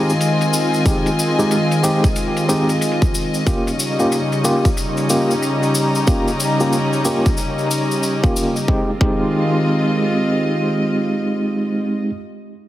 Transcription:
0.00 3.43 D#3 medium
0.00 0.11 G#3 medium
0.00 3.43 G#3 medium
0.00 0.11 C4 medium
0.00 3.47 C4 medium
0.00 0.11 D#4 medium
0.00 3.43 F4 medium
0.00 5.59 F4 medium
0.00 0.11 G4 medium
0.00 8.69 D#5 medium
0.00 3.47 G#5 medium
0.10 cabasa soft
0.21 closed hi-hat medium
0.21 cabasa soft
0.41 closed hi-hat soft
0.41 cabasa soft
0.53 cabasa medium
0.74 cabasa soft
0.86 1.09 G#3 medium
0.86 1.09 C4 medium
0.86 1.08 D#4 medium
0.86 1.09 G4 medium
0.86 kick loud
0.86 closed hi-hat medium
0.86 cabasa soft
1.06 closed hi-hat soft
1.06 cabasa soft
1.19 cabasa medium
1.39 1.55 G#3 medium
1.39 1.55 C4 medium
1.39 1.55 D#4 medium
1.39 1.55 G4 medium
1.39 cabasa soft
1.51 closed hi-hat medium
1.51 cabasa soft
1.71 closed hi-hat soft
1.71 cabasa soft
1.83 2.06 G#3 medium
1.83 2.06 C4 medium
1.83 2.06 D#4 medium
1.83 2.06 G4 medium
1.83 cabasa medium
2.04 kick loud
2.04 cabasa soft
2.16 closed hi-hat medium
2.16 cabasa soft
2.37 closed hi-hat soft
2.37 cabasa soft
2.49 2.72 G#3 medium
2.49 2.72 C4 medium
2.49 2.72 D#4 medium
2.49 2.72 G4 medium
2.49 cabasa medium
2.69 closed hi-hat soft
2.69 cabasa soft
2.81 closed hi-hat medium
2.81 cabasa soft
2.92 closed hi-hat soft
3.02 kick medium
3.02 cabasa soft
3.15 cabasa medium
3.34 cabasa soft
3.46 8.64 C#3 medium
3.46 8.64 G3 medium
3.46 3.69 A#3 medium
3.46 3.69 C#4 medium
3.46 8.68 C#4 medium
3.46 8.64 D#4 medium
3.46 3.69 F4 medium
3.46 3.69 G4 medium
3.46 kick loud
3.46 closed hi-hat medium
3.46 cabasa soft
3.67 closed hi-hat soft
3.67 cabasa soft
3.80 cabasa medium
3.90 8.68 G4 medium
3.99 4.16 A#3 medium
3.99 4.16 C#4 medium
3.99 4.16 F4 medium
3.99 4.16 G4 medium
3.99 cabasa soft
4.12 closed hi-hat medium
4.12 cabasa soft
4.32 closed hi-hat soft
4.32 cabasa soft
4.44 4.67 A#3 medium
4.44 4.67 C#4 medium
4.44 4.67 F4 medium
4.44 4.67 G4 medium
4.44 cabasa medium
4.65 kick medium
4.65 cabasa soft
4.77 closed hi-hat medium
4.77 cabasa soft
4.96 8.68 A#5 medium
4.96 closed hi-hat soft
4.96 cabasa soft
5.10 5.32 A#3 medium
5.10 5.32 C#4 medium
5.10 5.32 F4 medium
5.10 5.32 G4 medium
5.10 cabasa medium
5.30 closed hi-hat soft
5.30 cabasa soft
5.42 closed hi-hat medium
5.42 cabasa soft
5.63 closed hi-hat soft
5.63 cabasa soft
5.75 cabasa medium
5.95 cabasa soft
6.07 6.30 A#3 medium
6.07 6.30 C#4 medium
6.07 6.30 F4 medium
6.07 6.30 G4 medium
6.07 kick loud
6.07 closed hi-hat medium
6.07 cabasa soft
6.28 closed hi-hat soft
6.28 cabasa soft
6.40 cabasa medium
6.60 6.77 A#3 medium
6.60 6.77 C#4 medium
6.60 6.76 F4 medium
6.60 6.76 G4 medium
6.60 cabasa soft
6.73 closed hi-hat medium
6.73 cabasa soft
6.93 closed hi-hat soft
6.93 cabasa soft
7.05 7.28 A#3 medium
7.05 7.28 C#4 medium
7.05 7.28 F4 medium
7.05 7.28 G4 medium
7.05 cabasa medium
7.26 kick medium
7.26 closed hi-hat soft
7.26 cabasa soft
7.37 closed hi-hat medium
7.37 cabasa soft
7.58 closed hi-hat soft
7.58 cabasa soft
7.61 closed hi-hat soft
7.65 closed hi-hat soft
7.67 closed hi-hat soft
7.68 closed hi-hat soft
7.68 cabasa medium
7.91 closed hi-hat soft
7.91 cabasa soft
8.03 closed hi-hat medium
8.03 cabasa soft
8.23 8.54 A#3 medium
8.23 8.54 C#4 medium
8.23 8.54 F4 medium
8.23 8.54 G4 medium
8.23 kick medium
8.23 closed hi-hat soft
8.23 cabasa soft
8.36 cabasa medium
8.56 closed hi-hat soft
8.56 cabasa soft
8.68 11.77 D#3 medium
8.68 11.77 G#3 medium
8.68 8.90 G#3 medium
8.68 11.77 C4 medium
8.68 8.90 C4 medium
8.68 8.90 D#4 medium
8.68 11.77 F4 medium
8.68 8.90 G4 medium
8.68 kick loud
8.80 11.88 F4 medium
8.91 11.99 D#5 medium
9.01 12.09 G#3 medium
9.01 12.10 C4 medium
9.01 12.09 D#4 medium
9.01 12.09 G4 medium
9.01 kick loud

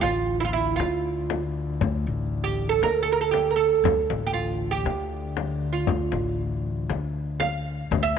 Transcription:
0.00 0.75 A1 medium
0.00 3.82 D2 medium
0.00 0.40 F4 medium
0.00 frame drum medium
0.40 0.44 E4 medium
0.45 0.53 F4 medium
0.53 0.76 E4 medium
0.76 1.77 D3 medium
0.76 1.41 F4 medium
0.76 frame drum medium
1.30 frame drum medium
1.81 2.05 D2 loud
1.81 frame drum medium
2.07 2.79 A1 medium
2.44 2.69 G4 medium
2.69 2.81 A4 medium
2.82 3.80 D3 medium
2.82 3.02 A#4 medium
2.82 frame drum medium
3.03 3.12 A4 medium
3.12 3.21 A#4 medium
3.21 3.31 A4 medium
3.31 3.50 G4 medium
3.31 frame drum medium
3.51 3.55 A#4 medium
3.56 4.23 A4 medium
3.82 7.90 D2 medium
3.82 4.08 D2 medium
3.82 frame drum loud
4.10 4.82 A1 medium
4.10 frame drum medium
4.27 4.33 G4 medium
4.33 4.71 F4 medium
4.71 5.72 G4 medium
4.85 5.84 D3 medium
4.85 frame drum medium
5.37 frame drum medium
5.73 6.41 F4 medium
5.87 6.12 D2 medium
5.87 frame drum medium
6.12 6.85 A1 medium
6.12 frame drum medium
6.90 7.88 D3 medium
6.90 frame drum medium
7.40 8.02 F5 medium
7.40 frame drum medium
7.91 8.19 D2 medium
7.91 8.15 D2 medium
7.91 frame drum medium
8.03 8.19 E5 loud

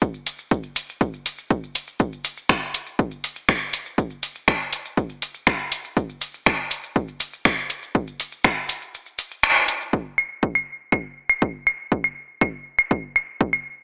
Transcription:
0.02 kick loud
0.02 maracas soft
0.14 maracas soft
0.26 open hi-hat loud
0.26 maracas loud
0.39 maracas soft
0.51 kick loud
0.51 maracas medium
0.63 maracas soft
0.76 open hi-hat loud
0.76 maracas loud
0.89 maracas soft
1.01 kick loud
1.01 maracas medium
1.13 maracas soft
1.26 open hi-hat loud
1.26 maracas medium
1.38 maracas soft
1.50 kick loud
1.50 maracas medium
1.63 maracas soft
1.75 open hi-hat loud
1.75 maracas loud
1.88 maracas soft
2.00 kick loud
2.00 maracas soft
2.13 maracas soft
2.24 open hi-hat loud
2.24 maracas medium
2.37 maracas soft
2.49 finger snap loud
2.49 kick loud
2.49 maracas soft
2.62 maracas soft
2.74 open hi-hat loud
2.74 maracas medium
2.86 maracas soft
2.99 kick loud
2.99 maracas soft
3.11 maracas soft
3.24 open hi-hat loud
3.24 maracas medium
3.36 maracas soft
3.49 finger snap loud
3.49 kick loud
3.49 maracas medium
3.61 maracas soft
3.73 open hi-hat loud
3.73 maracas medium
3.86 maracas soft
3.98 kick loud
3.98 maracas soft
4.10 maracas soft
4.23 open hi-hat medium
4.23 maracas medium
4.35 maracas soft
4.48 finger snap loud
4.48 kick loud
4.48 maracas soft
4.60 maracas soft
4.72 open hi-hat loud
4.72 maracas medium
4.85 maracas soft
4.97 kick loud
4.97 maracas soft
5.09 maracas soft
5.22 open hi-hat loud
5.22 maracas medium
5.34 maracas soft
5.47 finger snap loud
5.47 kick loud
5.47 maracas medium
5.59 maracas soft
5.72 open hi-hat loud
5.72 maracas medium
5.84 maracas soft
5.96 kick loud
5.96 maracas soft
6.09 maracas soft
6.21 open hi-hat medium
6.21 maracas medium
6.34 maracas soft
6.46 finger snap loud
6.46 kick loud
6.46 maracas soft
6.58 maracas soft
6.70 open hi-hat loud
6.70 maracas medium
6.83 maracas soft
6.96 kick loud
6.96 maracas medium
7.08 maracas soft
7.20 open hi-hat loud
7.20 maracas medium
7.33 maracas soft
7.45 finger snap loud
7.45 kick loud
7.45 maracas medium
7.58 maracas soft
7.70 open hi-hat loud
7.70 maracas medium
7.83 maracas soft
7.95 kick loud
7.95 maracas soft
8.07 maracas soft
8.20 open hi-hat medium
8.20 maracas medium
8.32 maracas soft
8.44 finger snap loud
8.44 kick loud
8.44 maracas soft
8.56 maracas soft
8.69 open hi-hat loud
8.69 maracas medium
8.82 maracas soft
8.95 maracas medium
9.06 maracas soft
9.18 open hi-hat loud
9.18 maracas medium
9.31 maracas soft
9.43 finger snap loud
9.43 maracas medium
9.56 maracas soft
9.68 open hi-hat loud
9.68 maracas medium
9.81 maracas soft
9.93 kick loud
10.18 claves soft
10.43 kick loud
10.55 claves soft
10.92 kick loud
10.92 claves soft
11.30 claves soft
11.42 kick loud
11.67 claves soft
11.92 kick loud
12.04 claves soft
12.41 kick loud
12.41 claves soft
12.78 claves soft
12.91 kick loud
13.16 claves soft
13.40 kick loud
13.53 claves soft

